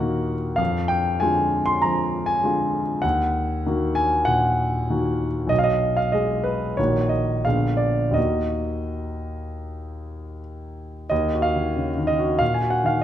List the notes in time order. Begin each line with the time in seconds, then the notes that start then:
Already playing: D#2 A#2 D#3 A#3 D#5 F#5
0.00 F#4
0.56 F2 F5
0.88 G5
1.20 D3 G#3 F4 G#5
1.66 C6
1.82 F3 A#5
2.26 G#5
2.44 D3 G#3 F4
3.02 D#2 F#5
3.66 D#3 A#3 F#4
3.95 G#5
4.25 A#2 F#5
4.90 D#3 A#3 F#4
5.47 B1 D#5
5.59 F5
5.64 D#5
5.97 F5
6.12 G#3 G#4 D#5
6.44 B4
6.77 A#1 D#3 A#3 F#4 C#5
7.09 D#5
7.45 A#1 D3 B3 G#4 F5
7.77 D5
8.11 D#2 D#3 A#3 D#5
8.15 F#4
11.10 D#2 D#5
11.34 F#4
11.42 F5
11.56 D#3
11.76 C#3
11.98 D#3
12.07 D#5
12.19 F#4
12.39 A#2 F5
12.54 G#5
12.61 F#4
12.70 F#5
12.84 D#3 F5